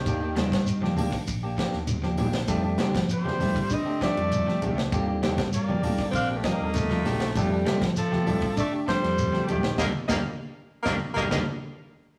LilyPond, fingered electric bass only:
\new Staff \with { instrumentName = "Fingered electric bass" } { \clef bass \time 4/4 \key f \mixolydian \tempo 4 = 99 ees,8. g,8. d,16 r16 bes,,8 r16 ees,8. bes,,8 | f,8 r16 f8. f,16 r16 d8. f,8 r16 c,8 | ees,8. g,8. d,16 r16 bes,,8 r16 ees,8. bes,,8 | f,8 r16 f8. f,16 r16 d8. f,8 r16 bes,,8 |
ees,16 r16 ees,16 r4 ees,16 r16 ees,16 ees,16 r4 r16 | }